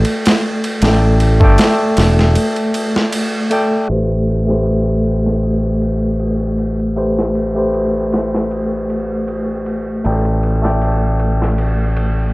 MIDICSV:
0, 0, Header, 1, 4, 480
1, 0, Start_track
1, 0, Key_signature, 0, "minor"
1, 0, Tempo, 769231
1, 509, Time_signature, 4, 2, 24, 8
1, 7696, End_track
2, 0, Start_track
2, 0, Title_t, "Tine electric piano"
2, 0, Program_c, 0, 4
2, 0, Control_c, 0, 64, 127
2, 0, Note_on_c, 0, 57, 81
2, 0, Note_on_c, 0, 69, 75
2, 0, Note_on_c, 0, 74, 81
2, 0, Note_on_c, 0, 79, 99
2, 479, Note_off_c, 0, 57, 0
2, 483, Note_off_c, 0, 69, 0
2, 488, Note_off_c, 0, 74, 0
2, 491, Note_off_c, 0, 79, 0
2, 513, Note_on_c, 0, 57, 75
2, 517, Note_on_c, 0, 69, 70
2, 520, Note_on_c, 0, 74, 72
2, 523, Note_on_c, 0, 79, 82
2, 849, Note_off_c, 0, 57, 0
2, 851, Note_off_c, 0, 69, 0
2, 853, Note_off_c, 0, 74, 0
2, 854, Note_off_c, 0, 79, 0
2, 873, Note_on_c, 0, 57, 92
2, 881, Note_on_c, 0, 69, 78
2, 891, Note_on_c, 0, 74, 79
2, 898, Note_on_c, 0, 79, 94
2, 2164, Note_off_c, 0, 57, 0
2, 2168, Note_off_c, 0, 69, 0
2, 2173, Note_off_c, 0, 74, 0
2, 2177, Note_off_c, 0, 79, 0
2, 2188, Note_on_c, 0, 57, 69
2, 2192, Note_on_c, 0, 69, 71
2, 2196, Note_on_c, 0, 74, 71
2, 2201, Note_on_c, 0, 79, 80
2, 2402, Note_off_c, 0, 57, 0
2, 2404, Note_off_c, 0, 69, 0
2, 2406, Note_off_c, 0, 74, 0
2, 2408, Note_off_c, 0, 79, 0
2, 2428, Note_on_c, 0, 57, 64
2, 2433, Note_on_c, 0, 67, 56
2, 2437, Control_c, 0, 64, 0
2, 2439, Note_on_c, 0, 71, 59
2, 2442, Note_on_c, 0, 72, 73
2, 2547, Control_c, 0, 64, 127
2, 2766, Note_off_c, 0, 57, 0
2, 2769, Note_off_c, 0, 67, 0
2, 2772, Note_off_c, 0, 71, 0
2, 2773, Note_off_c, 0, 72, 0
2, 2788, Note_on_c, 0, 57, 78
2, 2796, Note_on_c, 0, 67, 69
2, 2804, Note_on_c, 0, 71, 67
2, 2813, Note_on_c, 0, 72, 81
2, 4318, Note_off_c, 0, 57, 0
2, 4322, Note_off_c, 0, 67, 0
2, 4326, Note_off_c, 0, 71, 0
2, 4330, Note_off_c, 0, 72, 0
2, 4342, Note_on_c, 0, 57, 64
2, 4346, Note_on_c, 0, 67, 60
2, 4350, Note_on_c, 0, 71, 62
2, 4356, Note_on_c, 0, 72, 75
2, 4683, Note_off_c, 0, 57, 0
2, 4685, Note_off_c, 0, 67, 0
2, 4688, Note_off_c, 0, 71, 0
2, 4690, Note_off_c, 0, 72, 0
2, 4708, Note_on_c, 0, 57, 70
2, 4716, Note_on_c, 0, 67, 69
2, 4723, Note_on_c, 0, 71, 68
2, 4732, Note_on_c, 0, 72, 85
2, 6238, Note_off_c, 0, 57, 0
2, 6242, Note_off_c, 0, 67, 0
2, 6245, Note_off_c, 0, 71, 0
2, 6249, Note_off_c, 0, 72, 0
2, 6266, Note_on_c, 0, 57, 64
2, 6269, Note_on_c, 0, 69, 66
2, 6276, Note_on_c, 0, 74, 62
2, 6278, Control_c, 0, 64, 0
2, 6279, Note_on_c, 0, 79, 74
2, 6402, Control_c, 0, 64, 127
2, 6606, Note_off_c, 0, 57, 0
2, 6607, Note_off_c, 0, 69, 0
2, 6610, Note_off_c, 0, 74, 0
2, 6612, Note_off_c, 0, 79, 0
2, 6627, Note_on_c, 0, 57, 76
2, 6634, Note_on_c, 0, 69, 70
2, 6642, Note_on_c, 0, 74, 73
2, 6651, Note_on_c, 0, 79, 84
2, 7696, Note_off_c, 0, 57, 0
2, 7696, Note_off_c, 0, 69, 0
2, 7696, Note_off_c, 0, 74, 0
2, 7696, Note_off_c, 0, 79, 0
2, 7696, End_track
3, 0, Start_track
3, 0, Title_t, "Fingered electric bass"
3, 0, Program_c, 1, 33
3, 514, Note_on_c, 1, 33, 107
3, 881, Note_off_c, 1, 33, 0
3, 881, Note_on_c, 1, 31, 96
3, 977, Note_off_c, 1, 31, 0
3, 1235, Note_on_c, 1, 28, 88
3, 1472, Note_off_c, 1, 28, 0
3, 2430, Note_on_c, 1, 33, 75
3, 6247, Note_off_c, 1, 33, 0
3, 6275, Note_on_c, 1, 33, 85
3, 7696, Note_off_c, 1, 33, 0
3, 7696, End_track
4, 0, Start_track
4, 0, Title_t, "Drums"
4, 30, Note_on_c, 9, 51, 60
4, 92, Note_off_c, 9, 51, 0
4, 160, Note_on_c, 9, 51, 78
4, 168, Note_on_c, 9, 38, 102
4, 222, Note_off_c, 9, 51, 0
4, 230, Note_off_c, 9, 38, 0
4, 399, Note_on_c, 9, 51, 57
4, 462, Note_off_c, 9, 51, 0
4, 510, Note_on_c, 9, 51, 78
4, 518, Note_on_c, 9, 38, 101
4, 572, Note_off_c, 9, 51, 0
4, 580, Note_off_c, 9, 38, 0
4, 750, Note_on_c, 9, 51, 60
4, 812, Note_off_c, 9, 51, 0
4, 879, Note_on_c, 9, 36, 90
4, 941, Note_off_c, 9, 36, 0
4, 986, Note_on_c, 9, 51, 86
4, 994, Note_on_c, 9, 38, 113
4, 1049, Note_off_c, 9, 51, 0
4, 1057, Note_off_c, 9, 38, 0
4, 1228, Note_on_c, 9, 51, 71
4, 1236, Note_on_c, 9, 38, 55
4, 1290, Note_off_c, 9, 51, 0
4, 1299, Note_off_c, 9, 38, 0
4, 1367, Note_on_c, 9, 38, 44
4, 1430, Note_off_c, 9, 38, 0
4, 1469, Note_on_c, 9, 51, 71
4, 1531, Note_off_c, 9, 51, 0
4, 1599, Note_on_c, 9, 51, 39
4, 1662, Note_off_c, 9, 51, 0
4, 1711, Note_on_c, 9, 51, 65
4, 1773, Note_off_c, 9, 51, 0
4, 1849, Note_on_c, 9, 38, 48
4, 1911, Note_off_c, 9, 38, 0
4, 1950, Note_on_c, 9, 51, 76
4, 2012, Note_off_c, 9, 51, 0
4, 2189, Note_on_c, 9, 51, 55
4, 2252, Note_off_c, 9, 51, 0
4, 2429, Note_on_c, 9, 51, 73
4, 2491, Note_off_c, 9, 51, 0
4, 2557, Note_on_c, 9, 51, 36
4, 2619, Note_off_c, 9, 51, 0
4, 2669, Note_on_c, 9, 51, 60
4, 2731, Note_off_c, 9, 51, 0
4, 2804, Note_on_c, 9, 38, 43
4, 2867, Note_off_c, 9, 38, 0
4, 2905, Note_on_c, 9, 51, 73
4, 2967, Note_off_c, 9, 51, 0
4, 3146, Note_on_c, 9, 51, 58
4, 3208, Note_off_c, 9, 51, 0
4, 3285, Note_on_c, 9, 38, 29
4, 3347, Note_off_c, 9, 38, 0
4, 3388, Note_on_c, 9, 51, 71
4, 3451, Note_off_c, 9, 51, 0
4, 3628, Note_on_c, 9, 51, 58
4, 3691, Note_off_c, 9, 51, 0
4, 3867, Note_on_c, 9, 51, 72
4, 3930, Note_off_c, 9, 51, 0
4, 4108, Note_on_c, 9, 51, 55
4, 4170, Note_off_c, 9, 51, 0
4, 4239, Note_on_c, 9, 51, 37
4, 4302, Note_off_c, 9, 51, 0
4, 4348, Note_on_c, 9, 46, 70
4, 4410, Note_off_c, 9, 46, 0
4, 4484, Note_on_c, 9, 38, 40
4, 4546, Note_off_c, 9, 38, 0
4, 4587, Note_on_c, 9, 51, 60
4, 4649, Note_off_c, 9, 51, 0
4, 4828, Note_on_c, 9, 51, 76
4, 4890, Note_off_c, 9, 51, 0
4, 5069, Note_on_c, 9, 51, 59
4, 5077, Note_on_c, 9, 38, 47
4, 5131, Note_off_c, 9, 51, 0
4, 5139, Note_off_c, 9, 38, 0
4, 5207, Note_on_c, 9, 38, 36
4, 5269, Note_off_c, 9, 38, 0
4, 5311, Note_on_c, 9, 51, 74
4, 5373, Note_off_c, 9, 51, 0
4, 5552, Note_on_c, 9, 51, 65
4, 5614, Note_off_c, 9, 51, 0
4, 5790, Note_on_c, 9, 51, 77
4, 5852, Note_off_c, 9, 51, 0
4, 6028, Note_on_c, 9, 51, 57
4, 6091, Note_off_c, 9, 51, 0
4, 6269, Note_on_c, 9, 51, 79
4, 6332, Note_off_c, 9, 51, 0
4, 6396, Note_on_c, 9, 51, 39
4, 6458, Note_off_c, 9, 51, 0
4, 6509, Note_on_c, 9, 51, 60
4, 6571, Note_off_c, 9, 51, 0
4, 6645, Note_on_c, 9, 38, 46
4, 6707, Note_off_c, 9, 38, 0
4, 6748, Note_on_c, 9, 51, 76
4, 6811, Note_off_c, 9, 51, 0
4, 6986, Note_on_c, 9, 51, 59
4, 7048, Note_off_c, 9, 51, 0
4, 7126, Note_on_c, 9, 38, 32
4, 7188, Note_off_c, 9, 38, 0
4, 7227, Note_on_c, 9, 51, 68
4, 7290, Note_off_c, 9, 51, 0
4, 7467, Note_on_c, 9, 51, 61
4, 7529, Note_off_c, 9, 51, 0
4, 7696, End_track
0, 0, End_of_file